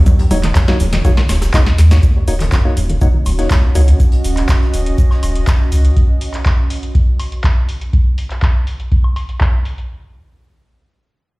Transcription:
0.06 D#2, kick, closed hi-hat, low conga, shaker
0.19 D#2, closed hi-hat
0.31 D#1 A#3 D#4 F#4 C#5, cross-stick, open hi-hat, low conga, shaker
0.43 D#3, snare, clap, closed hi-hat
0.55 F#2, kick, snare, clap, closed hi-hat, shaker
0.68 A#3 D#4 F#4 C#5, cross-stick, snare, low conga
0.80 D#1 C#2, open hi-hat, shaker
0.93 D#3, snare, closed hi-hat
1.05 C#3 A#3 D#4 F#4 C#5, kick, cross-stick, closed hi-hat, shaker
1.17 D#3, snare, high woodblock
1.29 D#1 C#2, snare, open hi-hat, high woodblock, shaker
1.41 cross-stick, snare, closed hi-hat, shaker
1.54 C#2 A#3 D#4 F#4 D#5, kick, snare, clap, open hi-hat, shaker
1.66 F2, snare
1.78 D#2, snare, open hi-hat, shaker
1.91 D#2 A#3 D#4 F#4 C#5, kick, snare, closed hi-hat, shaker
2.03 D#2 C#4, kick, closed hi-hat, shaker
2.16 D#2
2.28 D#1 A#3 D#4 F#4 C#5, open hi-hat, shaker
2.40 D#3, clap, closed hi-hat
2.52 F#2, kick, snare, clap, closed hi-hat, shaker
2.57 F#4
2.65 A#3 D#4 F#4 C#5
2.77 D#1 C#2, open hi-hat, shaker
2.90 D#3, closed hi-hat
3.01 C#3 A#3 D#4 F#4 C#5, kick, closed hi-hat, shaker
3.14 D#3
3.22 D#1 C#2 D#5, open hi-hat, high woodblock, shaker
3.39 A#3 D#4 F#4 C#5, snare, closed hi-hat
3.50 C#2, kick, snare, clap, closed hi-hat, shaker
3.63 F2
3.75 C#2 D#2 A#3 D#4 F#4 C#5, open hi-hat, shaker
3.88 D#2, closed hi-hat
4.00 kick, closed hi-hat, shaker
4.12 closed hi-hat
4.24 D#1, open hi-hat, shaker
4.37 clap, closed hi-hat
4.49 kick, snare, clap, closed hi-hat, shaker
4.62 snare
4.74 D#1, open hi-hat, shaker
4.86 closed hi-hat
4.98 kick, closed hi-hat, shaker
5.11 snare, high woodblock
5.23 D#1, open hi-hat, high woodblock, shaker
5.35 closed hi-hat
5.47 kick, snare, clap, closed hi-hat, shaker
5.72 C#2, open hi-hat, shaker
5.85 closed hi-hat
5.97 kick, closed hi-hat
6.21 open hi-hat
6.34 clap, closed hi-hat
6.46 kick, clap, closed hi-hat
6.70 open hi-hat
6.83 closed hi-hat
6.95 kick, closed hi-hat
7.20 open hi-hat, high woodblock
7.32 closed hi-hat
7.44 kick, clap, closed hi-hat
7.69 open hi-hat
7.81 closed hi-hat
7.93 kick, closed hi-hat
8.18 open hi-hat
8.30 clap, closed hi-hat
8.42 kick, clap, closed hi-hat
8.67 open hi-hat
8.80 closed hi-hat
8.92 kick, closed hi-hat
9.04 high woodblock
9.16 open hi-hat, high woodblock
9.29 closed hi-hat
9.41 kick, clap, closed hi-hat
9.65 open hi-hat
9.78 closed hi-hat

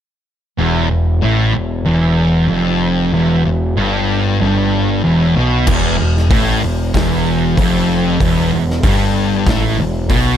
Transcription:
0.58 E1 E2
0.90 E1 E2
1.22 A1 A2
1.53 E1 E2
1.85 E1 E2
2.48 F1 F2
3.13 E1 E2
3.45 E1 E2
3.77 G1 G2
4.40 G1 G2
5.04 E1 E2
5.36 B1 B2
5.67 E1 E2, kick, crash
6.00 E1 E2
6.17 snare
6.30 A1 A2, kick, open hi-hat
6.62 E1 E2
6.94 E1 E2, kick, snare, open hi-hat
7.57 F1 F2, kick, open hi-hat
8.20 E1 E2, kick, open hi-hat
8.53 E1 E2
8.70 snare
8.83 G1 G2, kick, open hi-hat
9.47 A1 A2, kick, snare, open hi-hat
9.78 E1 E2
10.10 B1 B2, kick, open hi-hat

